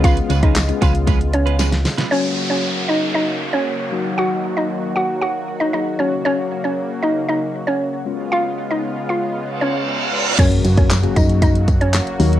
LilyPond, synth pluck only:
\new Staff \with { instrumentName = "Synth pluck" } { \time 4/4 \key fis \major \tempo 4 = 116 <eis' eis''>16 r8 <dis' dis''>16 r8 <eis' eis''>8 r8 <cis' cis''>8 r4 | <cis' cis''>16 r8 <cis' cis''>16 r8 <dis' dis''>8 <dis' dis''>16 r8 <cis' cis''>8 r8. | <fis' fis''>16 r8 <dis' dis''>16 r8 <fis' fis''>8 <fis' fis''>16 r8 <dis' dis''>16 <dis' dis''>16 r16 <cis' cis''>16 r16 | <cis' cis''>16 r8 <cis' cis''>16 r8 <dis' dis''>8 <dis' dis''>16 r8 <cis' cis''>8 r8. |
<eis' eis''>16 r8 <dis' dis''>16 r8 <eis' eis''>8 r8 <cis' cis''>8 r4 | <cis' cis''>16 r8 <cis' cis''>16 r8 <dis' dis''>8 <dis' dis''>16 r8 <cis' cis''>8 r8. | }